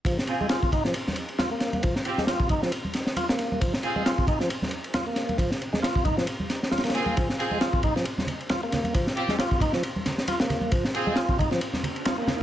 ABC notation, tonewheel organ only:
X:1
M:4/4
L:1/16
Q:"Swing 16ths" 1/4=135
K:Fm
V:1 name="Tonewheel organ"
F, z2 A, F2 E F, z4 F B,3 | F, z2 A, F2 E F, z4 F B,3 | F, z2 A, F2 E F, z4 F B,3 | F, z2 A, F2 E F, z4 F B,3 |
F, z2 A, F2 E F, z4 F B,3 | F, z2 A, F2 E F, z4 F B,3 | F, z2 A, F2 E F, z4 F B,3 |]